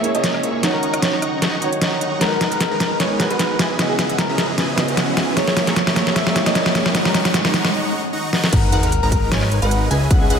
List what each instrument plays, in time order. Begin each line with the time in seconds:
Already playing: analog synth bass A#1, ambient pad G#3 A#3 C#4, grand piano A#3 E4 G#4 C#5, supersaw synth A#3 G#4 C#5 E5 C#6, clean electric guitar E5, riser
0.02 grand piano A#3 E4 G#4, closed hi-hat
0.06 grand piano C#5
0.15 analog synth bass A#1, supersaw synth A#3 G#4 C#5 E5 A#5, clean electric guitar D#5, closed hi-hat
0.24 snare, closed hi-hat
0.34 cross-stick
0.43 analog synth bass A#1, supersaw synth A#3 G#4 C#5 E5 C#6, closed hi-hat
0.61 grand piano D#3 D#4 F#4, ambient pad F#3 C#4 D#5, supersaw synth D#4 D#5 F#5 A#5 C#6, snare, closed hi-hat
0.65 grand piano C#5
0.74 clean electric guitar A#4
0.83 analog synth bass D#1, supersaw synth D#4 D#5 F#5 A#5 C#6, closed hi-hat
0.94 cross-stick, closed hi-hat
1.02 clean electric guitar C#5, snare, closed hi-hat
1.13 analog synth bass D#1, supersaw synth D#4 D#5 F#5 A#5 C#6
1.22 cross-stick, closed hi-hat
1.42 analog synth bass D#1, supersaw synth D#4 D#5 F#5 A#5 C#6, snare, closed hi-hat
1.60 grand piano D#3 D#4 F#4, closed hi-hat
1.64 grand piano C#5
1.73 closed hi-hat
1.81 supersaw synth D#4 D#5 F#5 A#5 C#6, snare, closed hi-hat
2.01 analog synth bass D#2, supersaw synth D#4 D#5 F#5 A#5 C#6, closed hi-hat
2.19 grand piano G#3 F#4 A#4, supersaw synth G#3 D#4 A#4 B4 F#5, ambient pad G#3 B3 F#4 A#5, clean electric guitar A#4, snare, closed hi-hat
2.23 grand piano B4
2.41 analog synth bass G#1, supersaw synth G#3 D#4 A#4 B4 F#5, snare, closed hi-hat
2.51 clean electric guitar A#4, closed hi-hat
2.60 snare, closed hi-hat
2.71 analog synth bass G#1, supersaw synth G#3 D#4 A#4 B4 A#5
2.80 clean electric guitar A#4, snare, closed hi-hat
3.00 analog synth bass G#1, supersaw synth G#3 D#4 A#4 B4 G#5, clean electric guitar C#5, snare, closed hi-hat
3.19 grand piano G#3 F#4 A#4 B4, snare, closed hi-hat
3.30 analog synth bass G#2, supersaw synth G#3 D#4 A#4 B4 F#5, clean electric guitar B4, closed hi-hat
3.39 snare, closed hi-hat
3.59 analog synth bass C#2, ambient pad C#3 B3 E4, supersaw synth C#4 G#4 B4 D#5 E5 G#5, snare, closed hi-hat
3.77 analog synth bass C#2, grand piano C#3 B3 E4 F#4, supersaw synth C#4 G#4 B4 D#5 E5 F#5, snare, closed hi-hat
3.81 grand piano D#5
3.90 clean electric guitar G#4
3.99 analog synth bass C#2, supersaw synth C#4 G#4 B4 D#5 E5 F#5, snare, closed hi-hat
4.09 closed hi-hat
4.18 clean electric guitar A#4, snare, closed hi-hat
4.29 analog synth bass C#2, supersaw synth C#4 G#4 B4 D#5 E5 A#5
4.38 snare, closed hi-hat
4.58 analog synth bass C#2, supersaw synth C#4 G#4 B4 D#5 E5 G#5, snare, closed hi-hat
4.75 grand piano C#3 B3 E4 F#4 D#5, snare, closed hi-hat
4.88 analog synth bass C#2, supersaw synth C#4 G#4 B4 D#5 E5 F#5, closed hi-hat
4.97 snare, closed hi-hat
5.17 analog synth bass C#2, supersaw synth C#4 G#4 B4 D#5 E5 G#5, snare, closed hi-hat
5.35 grand piano A#3 E4 G#4 C#5, supersaw synth A#3 G#4 C#5 E5 A#5, ambient pad A#3 C#4, clean electric guitar C#5, snare, closed hi-hat
5.48 snare
5.56 analog synth bass A#1, supersaw synth A#3 G#4 C#5 E5 A#5, snare, closed hi-hat
5.67 clean electric guitar C#5, snare, closed hi-hat
5.76 snare, closed hi-hat
5.87 analog synth bass A#1, supersaw synth A#3 G#4 C#5 E5 A#5, snare
5.96 clean electric guitar C#5, snare, closed hi-hat
6.07 snare
6.16 analog synth bass A#1, supersaw synth A#3 G#4 C#5 E5 C#6, clean electric guitar E5, snare, closed hi-hat
6.27 snare
6.33 grand piano A#3 E4 G#4 C#5, snare, closed hi-hat
6.46 supersaw synth A#3 G#4 C#5 E5 A#5, clean electric guitar D#5, snare, closed hi-hat
6.55 snare, closed hi-hat
6.66 snare
6.75 analog synth bass A#1, supersaw synth A#3 G#4 C#5 E5 C#6, snare, closed hi-hat
6.86 snare
6.93 grand piano D#3 D#4 F#4, ambient pad D#3 F#3, supersaw synth D#4 D#5 F#5 A#5 C#6, snare, closed hi-hat
6.97 grand piano C#5
7.05 clean electric guitar A#4, snare
7.14 supersaw synth D#4 D#5 F#5 A#5 C#6, snare, closed hi-hat
7.25 snare, closed hi-hat
7.34 clean electric guitar C#5, snare, closed hi-hat
7.45 supersaw synth D#4 D#5 F#5 A#5 C#6, snare
7.54 snare, closed hi-hat
7.65 snare
7.74 supersaw synth D#4 D#5 F#5 A#5 C#6
8.13 supersaw synth D#4 D#5 F#5 A#5 C#6
8.33 supersaw synth D#4 D#5 F#5 A#5 C#6, snare
8.44 snare
8.53 analog synth bass G#1, supersaw synth G#3 D#4 A#4 B4 F#5, ambient pad G#3 D#4 F#4 A#4 B4, clean electric guitar A#4, synth pluck F#5, kick, closed hi-hat, crash, sub drop
8.72 analog synth bass G#1, supersaw synth G#3 D#4 A#4 B4 F#5, synth pluck F#5, closed hi-hat
8.83 clean electric guitar A#4, closed hi-hat
8.92 closed hi-hat
9.03 analog synth bass G#1, supersaw synth G#3 D#4 A#4 B4 A#5, synth pluck A#5
9.12 clean electric guitar A#4, kick, closed hi-hat
9.31 analog synth bass G#1, supersaw synth G#3 D#4 A#4 B4 G#5, clean electric guitar C#5, synth pluck G#5, snare, closed hi-hat
9.42 cross-stick
9.52 closed hi-hat
9.62 analog synth bass G#1, supersaw synth G#3 D#4 A#4 B4 F#5, clean electric guitar B4, synth pluck F#5, closed hi-hat
9.71 closed hi-hat
9.91 analog synth bass C#2, ambient pad C#3 B3 E4, supersaw synth C#4 G#4 B4 D#5 E5 G#5, synth pluck G#5, closed hi-hat
10.10 analog synth bass C#2, supersaw synth C#4 G#4 B4 D#5 E5 F#5, synth pluck F#5, kick, closed hi-hat
10.22 clean electric guitar G#4
10.30 analog synth bass C#2, supersaw synth C#4 G#4 B4 D#5 E5 F#5, synth pluck F#5, closed hi-hat